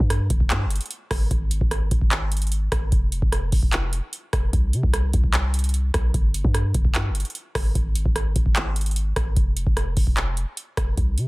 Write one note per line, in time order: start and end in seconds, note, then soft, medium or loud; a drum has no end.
0.00 0.29 G2 loud
0.00 kick loud
0.10 cross-stick medium
0.10 closed hi-hat medium
0.30 0.52 G1 loud
0.30 kick medium
0.30 closed hi-hat medium
0.40 kick medium
0.50 0.67 G2 loud
0.50 clap loud
0.50 closed hi-hat medium
0.65 0.80 G1 loud
0.70 closed hi-hat medium
0.76 closed hi-hat medium
0.81 closed hi-hat medium
0.86 closed hi-hat soft
0.91 closed hi-hat medium
1.11 1.30 G1 loud
1.11 kick loud
1.11 cross-stick loud
1.11 open hi-hat medium
1.31 1.60 G#1 loud
1.31 kick loud
1.31 closed hi-hat medium
1.51 closed hi-hat medium
1.61 1.90 G#1 loud
1.61 kick loud
1.71 cross-stick medium
1.71 closed hi-hat medium
1.91 2.69 G#1 loud
1.91 kick medium
1.91 closed hi-hat medium
2.01 kick medium
2.11 clap loud
2.11 closed hi-hat medium
2.32 closed hi-hat medium
2.37 closed hi-hat medium
2.42 closed hi-hat medium
2.47 closed hi-hat soft
2.52 closed hi-hat medium
2.72 2.91 G#1 loud
2.72 kick loud
2.72 cross-stick loud
2.72 closed hi-hat medium
2.92 3.21 F1 loud
2.92 kick loud
2.92 closed hi-hat medium
3.12 closed hi-hat medium
3.22 3.51 F1 loud
3.22 kick medium
3.32 cross-stick medium
3.32 closed hi-hat medium
3.52 4.01 F1 loud
3.52 kick medium
3.52 open hi-hat medium
3.63 kick medium
3.72 clap loud
3.72 closed hi-hat medium
3.93 closed hi-hat medium
4.13 closed hi-hat medium
4.33 4.52 F1 loud
4.33 kick loud
4.33 cross-stick loud
4.33 closed hi-hat medium
4.53 4.75 C2 loud
4.53 kick loud
4.53 closed hi-hat medium
4.73 4.83 C3 loud
4.73 closed hi-hat medium
4.83 5.12 C2 loud
4.83 kick loud
4.93 cross-stick medium
4.93 closed hi-hat medium
5.13 5.91 C2 loud
5.13 kick medium
5.13 closed hi-hat medium
5.24 kick medium
5.34 clap loud
5.34 closed hi-hat medium
5.54 closed hi-hat medium
5.59 closed hi-hat medium
5.64 closed hi-hat soft
5.69 closed hi-hat soft
5.74 closed hi-hat medium
5.94 6.13 B1 loud
5.94 kick loud
5.94 cross-stick loud
5.94 closed hi-hat medium
6.14 6.43 G1 loud
6.14 kick loud
6.14 closed hi-hat medium
6.34 closed hi-hat medium
6.44 6.73 G2 loud
6.44 kick loud
6.54 cross-stick medium
6.54 closed hi-hat medium
6.74 6.96 G1 loud
6.74 kick medium
6.74 closed hi-hat medium
6.85 kick medium
6.95 7.11 G2 loud
6.95 clap loud
6.95 closed hi-hat medium
7.10 7.24 G1 loud
7.15 closed hi-hat medium
7.20 closed hi-hat medium
7.25 closed hi-hat soft
7.30 closed hi-hat soft
7.35 closed hi-hat medium
7.55 7.74 G1 loud
7.55 kick loud
7.55 cross-stick loud
7.55 open hi-hat medium
7.75 8.04 G#1 loud
7.75 kick loud
7.75 closed hi-hat medium
7.95 closed hi-hat medium
8.06 8.35 G#1 loud
8.06 kick loud
8.16 cross-stick medium
8.16 closed hi-hat medium
8.36 9.13 G#1 loud
8.36 kick medium
8.36 closed hi-hat medium
8.46 kick loud
8.56 clap loud
8.56 closed hi-hat medium
8.76 closed hi-hat medium
8.81 closed hi-hat medium
8.86 closed hi-hat soft
8.91 closed hi-hat soft
8.96 closed hi-hat medium
9.16 9.36 G#1 loud
9.16 kick loud
9.16 cross-stick loud
9.16 closed hi-hat medium
9.36 9.65 F1 loud
9.36 kick loud
9.36 closed hi-hat medium
9.57 closed hi-hat medium
9.67 9.96 F1 loud
9.67 kick loud
9.77 cross-stick medium
9.77 closed hi-hat medium
9.97 10.45 F1 loud
9.97 kick medium
9.97 open hi-hat medium
10.07 kick loud
10.17 clap loud
10.17 closed hi-hat medium
10.37 closed hi-hat medium
10.57 closed hi-hat medium
10.77 10.97 F1 loud
10.77 kick loud
10.77 cross-stick loud
10.77 closed hi-hat medium
10.97 11.19 C2 loud
10.97 kick loud
10.97 closed hi-hat medium
11.18 11.27 C3 loud
11.18 closed hi-hat medium